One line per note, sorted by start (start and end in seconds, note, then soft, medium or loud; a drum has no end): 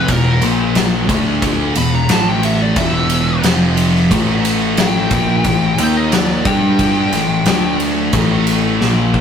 0.08 0.40 E1 medium
0.08 0.36 E2 medium
0.08 0.36 B2 medium
0.08 0.42 A#4 medium
0.08 kick medium
0.08 ride loud
0.42 1.05 A#1 loud
0.42 1.09 A#2 medium
0.42 1.09 F3 loud
0.42 1.10 A#3 loud
0.42 ride medium
0.75 snare loud
0.75 ride loud
1.09 1.72 D2 medium
1.09 1.75 D3 medium
1.09 1.75 A3 loud
1.09 1.76 D4 loud
1.09 kick loud
1.09 ride medium
1.42 kick loud
1.42 ride loud
1.75 2.07 E1 medium
1.75 2.03 E2 medium
1.75 2.03 B2 medium
1.75 1.93 B5 medium
1.75 ride medium
1.95 2.11 A#5 medium
2.09 2.72 A1 medium
2.09 2.75 A2 medium
2.09 2.76 E3 loud
2.09 2.76 A3 loud
2.09 2.28 A5 medium
2.09 snare loud
2.09 ride loud
2.28 2.44 G5 medium
2.43 2.61 E5 medium
2.43 ride medium
2.61 2.77 D5 medium
2.76 3.39 E1 medium
2.76 3.44 E2 medium
2.76 3.45 B2 loud
2.76 3.45 E3 loud
2.76 3.42 E5 medium
2.76 kick loud
2.76 ride loud
3.10 ride medium
3.43 4.06 F1 medium
3.43 4.10 F2 medium
3.43 4.10 C3 medium
3.43 4.10 F3 loud
3.43 snare loud
3.43 ride loud
3.77 ride medium
3.96 snare soft
4.11 5.07 A1 loud
4.11 5.10 A2 loud
4.11 5.11 E3 loud
4.11 5.11 A3 loud
4.11 kick loud
4.11 ride loud
4.45 ride medium
4.77 5.76 G5 medium
4.77 snare loud
4.77 ride loud
5.11 5.42 A#1 medium
5.11 5.44 A#2 medium
5.11 5.44 F3 loud
5.11 5.44 A#3 loud
5.11 kick loud
5.11 ride medium
5.44 5.76 A1 medium
5.44 5.72 A2 medium
5.44 5.72 E3 medium
5.44 kick medium
5.44 ride medium
5.78 6.42 D#2 loud
5.78 6.45 D#3 medium
5.78 6.44 A#3 loud
5.78 6.45 D#4 loud
5.78 5.95 G5 medium
5.78 ride medium
5.97 6.13 D#5 medium
6.12 6.45 D5 medium
6.12 snare loud
6.12 ride loud
6.45 7.09 G2 medium
6.45 7.11 G3 medium
6.45 7.12 D4 loud
6.45 7.12 G4 loud
6.45 7.77 G5 loud
6.45 kick loud
6.45 ride medium
6.79 kick loud
6.79 ride medium
7.12 7.44 A1 medium
7.12 7.39 A2 medium
7.12 7.40 E3 medium
7.12 snare soft
7.12 ride medium
7.46 8.10 D2 medium
7.46 8.12 D3 loud
7.46 8.13 A3 loud
7.46 8.13 D4 loud
7.46 snare loud
7.46 ride loud
7.80 ride medium
8.13 8.77 A1 medium
8.13 8.80 A2 loud
8.13 8.81 E3 loud
8.13 8.81 A3 loud
8.13 kick loud
8.13 ride loud
8.47 ride medium
8.80 9.21 A#1 medium
8.80 9.21 A#2 loud
8.80 9.21 F3 loud
8.80 9.21 A#3 loud
8.80 snare medium
9.14 kick medium